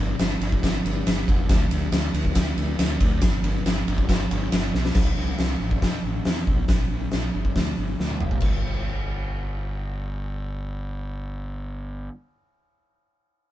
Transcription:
Already playing: fingered electric bass G1
0.19 fingered electric bass G1, snare, ride
0.40 fingered electric bass G1, ride
0.52 kick
0.63 fingered electric bass G1, kick, snare, ride
0.85 fingered electric bass G1, ride
1.06 fingered electric bass G1, snare, ride
1.28 fingered electric bass E1, kick, ride
1.49 fingered electric bass D2, kick, snare, ride
1.70 fingered electric bass D2, ride
1.92 fingered electric bass D2, snare, ride
2.13 fingered electric bass D2, ride
2.25 kick
2.35 fingered electric bass D2, kick, snare, ride
2.57 fingered electric bass D2, ride
2.79 fingered electric bass D2, snare, ride
3.01 fingered electric bass D2, kick, ride
3.21 fingered electric bass G1, kick, snare, ride
3.43 fingered electric bass G1, ride
3.65 fingered electric bass G1, snare, ride
3.87 fingered electric bass G1, ride
3.98 kick
4.09 fingered electric bass G1, kick, snare, ride
4.31 fingered electric bass G1, ride
4.52 fingered electric bass G1, snare, ride
4.73 fingered electric bass B1, snare
4.85 snare
4.95 fingered electric bass C2, kick, snare, crash
5.17 fingered electric bass C2
5.38 fingered electric bass C2, snare, open hi-hat
5.60 fingered electric bass A1
5.71 kick
5.82 fingered electric bass F2, kick, snare, open hi-hat
6.03 fingered electric bass A1
6.25 fingered electric bass E2, snare, open hi-hat
6.47 fingered electric bass B1, kick
6.68 fingered electric bass A#1, kick, snare, open hi-hat
6.91 fingered electric bass A#1
7.11 fingered electric bass A#1, snare, open hi-hat
7.34 fingered electric bass G1
7.45 kick
7.55 fingered electric bass D2, kick, snare, open hi-hat
7.78 fingered electric bass G1
8.00 fingered electric bass D2, snare
8.10 high tom
8.21 fingered electric bass F1, mid tom
8.31 floor tom
8.40 fingered electric bass G1, kick, crash

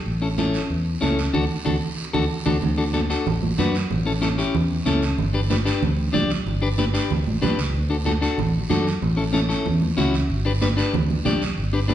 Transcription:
0.06 fingered electric bass A1, high conga, long guiro
0.22 clean electric guitar C#4 E4 A4
0.38 clean electric guitar C#4 E4 A4, high conga, short guiro
0.54 short guiro
0.70 fingered electric bass E2, high conga, long guiro
1.01 fingered electric bass C#2, clean electric guitar C#4 E4 A4, high conga, short guiro
1.19 short guiro
1.33 fingered electric bass D2, clean electric guitar D4 F#4 A4, low conga, long guiro
1.65 fingered electric bass D2, clean electric guitar D4 F#4 A4, low conga, long guiro
2.13 fingered electric bass D2, clean electric guitar D4 F#4 A4, low conga, long guiro
2.46 fingered electric bass D2, clean electric guitar D4 F#4 A4, low conga, long guiro
2.62 fingered electric bass D2, low conga, long guiro
2.78 clean electric guitar D4 F#4 A4
2.93 clean electric guitar D4 F#4 A4, high conga, short guiro
3.10 clean electric guitar D4 F#4 A4, short guiro
3.26 fingered electric bass A1, low conga, long guiro
3.43 high conga
3.58 fingered electric bass F#2, clean electric guitar D4 F#4 B4, high conga, low conga, short guiro
3.75 short guiro
3.91 fingered electric bass A1, low conga, long guiro
4.06 clean electric guitar C#4 E4 A4
4.21 clean electric guitar C#4 E4 A4, high conga, short guiro
4.38 clean electric guitar C#4 E4 G4, short guiro
4.55 fingered electric bass E2, low conga, long guiro
4.86 fingered electric bass C#2, clean electric guitar C#4 E4 A4, high conga, short guiro
5.02 short guiro
5.18 fingered electric bass G1, low conga, long guiro
5.34 clean electric guitar D4 G4 B4
5.50 clean electric guitar D4 G4 B4, high conga, short guiro
5.65 clean electric guitar D4 G4 B4, short guiro
5.82 fingered electric bass D2, low conga, long guiro
6.13 fingered electric bass B1, clean electric guitar D4 G4 D5, high conga, low conga, short guiro
6.30 short guiro
6.46 fingered electric bass G1, low conga, long guiro
6.62 clean electric guitar D4 G4 B4
6.78 clean electric guitar D4 G4 B4, high conga, short guiro
6.94 clean electric guitar D4 G4 B4, short guiro
7.10 fingered electric bass D2, low conga, long guiro
7.27 fingered electric bass A1, high conga
7.42 fingered electric bass B1, clean electric guitar D4 G4 B4, high conga, low conga, short guiro
7.58 fingered electric bass C#2, short guiro
7.74 fingered electric bass D2, long guiro
7.90 clean electric guitar D4 F#4 A4
8.05 clean electric guitar D4 F#4 A4, high conga, short guiro
8.21 clean electric guitar D4 F#4 A4, short guiro
8.38 fingered electric bass A1, low conga, long guiro
8.70 fingered electric bass F#2, clean electric guitar D4 F#4 A4, high conga, low conga, short guiro
8.87 short guiro
9.02 fingered electric bass A1, low conga, long guiro
9.16 clean electric guitar C#4 E4 A4
9.33 clean electric guitar C#4 E4 A4, high conga, short guiro
9.49 clean electric guitar C#4 E4 A4, short guiro
9.66 fingered electric bass E2, low conga, long guiro
9.82 high conga
9.97 fingered electric bass C#2, clean electric guitar C#4 E4 F#4, high conga, low conga, short guiro
10.14 short guiro
10.30 fingered electric bass G1, long guiro
10.45 clean electric guitar D4 G4 B4
10.61 clean electric guitar D4 G4 B4, high conga, short guiro
10.77 clean electric guitar D4 G4 B4, short guiro
10.93 fingered electric bass D2, low conga, long guiro
11.10 high conga
11.25 fingered electric bass B1, clean electric guitar D4 G4 D5, high conga, low conga, short guiro
11.42 short guiro
11.58 fingered electric bass G1, long guiro
11.73 clean electric guitar D4 G4 B4
11.88 clean electric guitar D4 G4 B4, high conga, short guiro

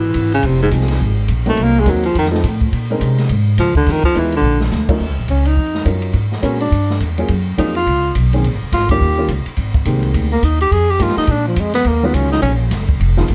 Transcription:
Already playing: upright bass G#1, baritone saxophone E3
0.14 upright bass G#1, kick, hi-hat pedal, ride
0.32 baritone saxophone C#3, ride
0.43 upright bass F1, baritone saxophone C3, kick, ride
0.63 baritone saxophone G#2
0.71 upright bass C2, grand piano F3 G#3 C4 D#4 G#4, kick, hi-hat pedal, ride
0.81 snare
0.88 snare, ride
1.00 upright bass G#1, kick
1.28 upright bass A#1, kick, hi-hat pedal, ride
1.46 grand piano F#3 A#3 C4 D#4 A#4, baritone saxophone A3, ride
1.57 upright bass C2, kick, ride
1.63 baritone saxophone A#3
1.80 baritone saxophone G#3
1.86 upright bass D#2, grand piano F#3 A#3 C4 D#4 A#4, baritone saxophone F#3, kick, hi-hat pedal, ride
2.04 baritone saxophone F3, ride
2.15 upright bass F2, baritone saxophone D#3, kick, ride
2.25 snare
2.31 grand piano F3 A3 C4 D#4 A4, snare
2.44 upright bass A2, kick, hi-hat pedal, ride
2.61 kick
2.72 upright bass A#2, kick, ride
2.90 grand piano G#3 C4 C#4 D#4 A#4
3.00 upright bass C3, kick, hi-hat pedal, ride
3.18 snare, ride
3.29 upright bass G#2, kick, ride
3.58 upright bass C#2, baritone saxophone F3, kick, snare, hi-hat pedal, ride
3.75 baritone saxophone D3, kick
3.86 upright bass F2, kick, snare, ride
3.91 baritone saxophone D#3
4.04 baritone saxophone F3, kick
4.14 upright bass D#2, grand piano G#3 B3 D#4 F4 B4, kick, hi-hat pedal, ride
4.19 baritone saxophone E3
4.32 ride
4.36 baritone saxophone D3
4.42 upright bass A#1
4.61 snare
4.71 upright bass D2, snare, hi-hat pedal
4.89 grand piano F#3 C#4 D#4 F4 A#4, kick, crash
5.00 upright bass D#2
5.09 upright bass C#2
5.19 upright bass A#1
5.28 upright bass C#2, tenor saxophone C#4, kick, hi-hat pedal, ride
5.45 tenor saxophone D#4, ride
5.57 upright bass F2, kick
5.75 snare
5.85 upright bass F#2, grand piano F#3 C#4 D#4 F4 A#4, kick, hi-hat pedal, ride
6.02 ride
6.13 upright bass G#2, kick, ride
6.32 snare
6.42 upright bass A#2, grand piano G#3 B3 C#4 F#4 A#4, tenor saxophone C#4, kick, hi-hat pedal, ride
6.60 tenor saxophone D4, ride
6.72 upright bass G2, kick, ride
6.90 snare
7.00 upright bass E2, kick, hi-hat pedal, ride
7.18 grand piano F#3 A#3 C#4 F4 G#4, ride
7.28 upright bass F#2, kick, ride
7.58 upright bass F2, grand piano F#3 A#3 C#4 F4 G#4, tenor saxophone D#4, kick, hi-hat pedal, ride
7.75 tenor saxophone F4, ride
7.86 upright bass C#2, kick, ride
8.15 upright bass B1, kick, hi-hat pedal, ride
8.33 grand piano D#3 A#3 C4 C#4 G#4, ride
8.43 upright bass A#1, kick, ride
8.54 upright bass G#1
8.63 upright bass F1
8.72 upright bass G#1, tenor saxophone F4, kick, snare, hi-hat pedal, ride
8.89 grand piano D#3 G3 A#3 C#4 F4, tenor saxophone G4, kick, ride
9.01 upright bass D#2, kick
9.17 grand piano D#3 G3 A#3 C#4 F4
9.28 upright bass C#2, kick, hi-hat pedal, ride
9.46 muted upright bass stroke, ride
9.57 upright bass G#1, kick, ride
9.74 kick, ride
9.85 upright bass C2, grand piano D#3 G#3 A#3 C4 G4, hi-hat pedal, ride
10.03 ride
10.14 upright bass D2, kick, ride
10.32 tenor saxophone A#3
10.42 upright bass D#2, tenor saxophone D#4, kick, hi-hat pedal, ride
10.61 tenor saxophone G4, ride
10.71 upright bass F2, tenor saxophone G#4, kick, ride
10.91 tenor saxophone G4
10.99 upright bass G2, grand piano F3 G#3 A#3 D#4 G4, tenor saxophone F4, kick, hi-hat pedal, ride
11.09 snare
11.17 tenor saxophone D#4, muted upright bass stroke, snare
11.27 upright bass A#2, tenor saxophone D4, kick, ride
11.47 tenor saxophone F3
11.56 upright bass F2, tenor saxophone G#3, kick, hi-hat pedal, ride
11.74 tenor saxophone B3, snare, ride
11.85 upright bass D#2, tenor saxophone A#3, kick, ride
12.03 grand piano D#3 F#3 G#3 C#4 F4, tenor saxophone B3
12.14 upright bass C#2, tenor saxophone C#4, kick, hi-hat pedal, ride
12.32 tenor saxophone D#4, snare
12.42 upright bass A#1, tenor saxophone C#4, kick, ride
12.71 upright bass F#1, kick, snare, hi-hat pedal, ride
12.89 kick
13.00 upright bass F1, kick, ride
13.17 grand piano D#3 F3 G#3 B3 F4, snare
13.28 upright bass G#1, kick, hi-hat pedal, ride

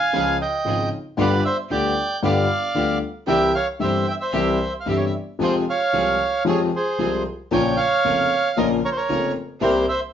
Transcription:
Already playing: bandoneon F5 G#5
0.13 grand piano C#2 C#3 F3 G#3 F4, string section C#4 F4 G#4
0.42 bandoneon D#5 G5
0.65 grand piano G#1 G#2 C#3 F3 G#3 F4, string section C#4 F4 G#4
1.17 grand piano G1 G2 D3 G3 B3 F4, string section B3 F4 G4, bandoneon B4 D5
1.45 bandoneon C5 E5
1.69 grand piano D2 D3 G3 B3 F4, string section B3 F4 G4, bandoneon D5 G5
2.23 grand piano G1 G2 D3 G3 B3 F4, string section B3 F4 G4, bandoneon D5 F5
2.75 grand piano D2 D3 G3 B3 F4, string section B3 F4 G4
3.26 grand piano C2 C3 E3 G3 E4, string section C4 E4 G4, bandoneon E5 G5
3.55 bandoneon C#5 F5
3.79 grand piano G1 G2 C3 E3 G3 E4, string section C4 E4 G4, bandoneon E5
3.84 bandoneon C5
4.07 bandoneon E5 G5
4.20 bandoneon C5 E5
4.32 grand piano C2 C3 E3 G3 E4, string section C4 E4 G4
4.80 bandoneon F5
4.86 grand piano G1 G2 C3 E3 G3 E4, string section C4 E4 G4, bandoneon E5
4.97 bandoneon C#5
5.06 bandoneon E5
5.39 grand piano F2 C3 F3 G#3 F4, string section C4 F4 G#4
5.44 bandoneon C5 G5
5.70 bandoneon C#5 F5
5.93 grand piano C2 C3 F3 G#3 F4, string section C4 F4 G#4
6.45 grand piano F2 C3 F3 G#3 F4, string section C4 F4 G#4, bandoneon G#4
6.49 bandoneon C#5
6.76 bandoneon G#4 C5
6.99 grand piano C2 C3 F3 G#3 F4, string section C4 F4 G#4
7.51 grand piano A#1 A#2 C#3 F3 A#3 F4, string section C#4 F4 A#4, bandoneon C#5 G5
7.77 bandoneon C#5 F5
8.04 grand piano F1 F2 C#3 F3 A#3 F4, string section C#4 F4 A#4
8.57 grand piano A#1 A#2 C#3 F3 A#3 F4, string section C#4 F4 A#4, bandoneon A#4 D#5
8.85 bandoneon A#4 C#5
8.92 bandoneon C5
8.97 bandoneon A#4 C#5
9.08 grand piano F1 F2 C#3 F3 A#3 F4, string section C#4 F4 A#4
9.60 grand piano C2 C3 G3 A#3 E4, string section C4 E4 A#4, bandoneon G4 C5
9.89 bandoneon C5 E5

